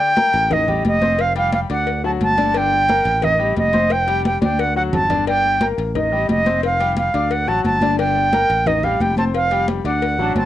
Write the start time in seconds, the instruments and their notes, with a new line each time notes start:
Already playing: grand piano D3 D4 D5, flute G5
0.00 high conga
0.17 grand piano A#3 A#4 A#5, cowbell, high conga
0.34 fretless electric bass A1, cowbell, high conga
0.50 grand piano D#3 D#4 D#5, flute D#5, cowbell, high conga, low conga
0.67 grand piano G3 G4 G5, high conga, low conga
0.85 fretless electric bass F1, flute D#5, cowbell, high conga
1.02 grand piano C4 C5 C6, cowbell, high conga
1.19 flute F5, cowbell
1.36 grand piano G3 G4 G5, flute F5, cowbell, high conga
1.52 flute F5, cowbell, high conga
1.70 fretless electric bass D2, grand piano D4 D5 D6, flute F#5, cowbell
1.87 cowbell, high conga
2.04 grand piano F#3 F#4 F#5, flute A5, high conga
2.21 fretless electric bass G1, flute A5, cowbell, high conga
2.38 grand piano D3 D4 D5, cowbell, high conga
2.49 flute A5
2.54 grand piano D3 D4 D5, flute G5, cowbell, high conga
2.72 high conga
2.88 grand piano A#3 A#4 A#5, cowbell, high conga
3.05 fretless electric bass A1, cowbell, high conga
3.22 grand piano D#3 D#4 D#5, flute D#5, cowbell, high conga, low conga
3.39 grand piano G3 G4 G5, high conga
3.57 fretless electric bass F1, flute D#5, cowbell, high conga
3.73 grand piano C4 C5 C6, cowbell, high conga
3.90 flute G5, cowbell, high conga
4.08 grand piano G3 G4 G5, cowbell, high conga
4.25 flute G5, cowbell, high conga
4.41 fretless electric bass D2, grand piano D4 D5 D6, flute G5, cowbell, high conga
4.59 flute F#5, cowbell
4.76 grand piano F#3 F#4 F#5, flute F#5
4.93 fretless electric bass G1, flute A5, cowbell, low conga
5.10 grand piano D3 D4 D5, cowbell, low conga
5.27 grand piano D3 D4 D5, flute G5, cowbell, high conga
5.44 high conga
5.61 grand piano A#3 A#4 A#5, cowbell, high conga
5.78 fretless electric bass A1, cowbell, high conga
5.95 grand piano D#3 D#4 D#5, flute D#5, cowbell, high conga, low conga
6.12 grand piano G3 G4 G5, high conga
6.29 fretless electric bass F1, flute D#5, cowbell, high conga
6.46 grand piano C4 C5 C6, cowbell, high conga
6.63 flute F5, cowbell
6.80 grand piano G3 G4 G5, cowbell, high conga
6.96 flute F5, cowbell, high conga
7.14 fretless electric bass D2, grand piano D4 D5 D6, cowbell
7.31 flute F#5, cowbell, high conga
7.47 fretless electric bass A1, grand piano F#3 F#4 F#5, flute A5, high conga
7.64 fretless electric bass G1, flute A5, cowbell, high conga
7.81 grand piano D3 D4 D5, cowbell, high conga
7.98 grand piano D3 D4 D5, flute G5, cowbell, high conga
8.16 high conga
8.32 grand piano A#3 A#4 A#5, cowbell, high conga
8.49 fretless electric bass A1, cowbell, high conga
8.66 grand piano D#3 D#4 D#5, flute D#5, cowbell, high conga, low conga
8.83 grand piano G3 G4 G5, flute F5, high conga, low conga
9.00 fretless electric bass F1, flute G5, cowbell, high conga
9.17 grand piano C4 C5 C6, flute A5, cowbell, high conga
9.34 flute F5, cowbell, high conga
9.51 grand piano G3 G4 G5, cowbell, high conga
9.68 cowbell, high conga
9.85 fretless electric bass D2, grand piano D4 D5 D6, flute F#5, cowbell
10.02 cowbell, high conga
10.19 fretless electric bass A1, grand piano F#3 F#4 F#5, trombone section D4, high conga
10.35 fretless electric bass G1, trombone section C4, flute A5, cowbell, high conga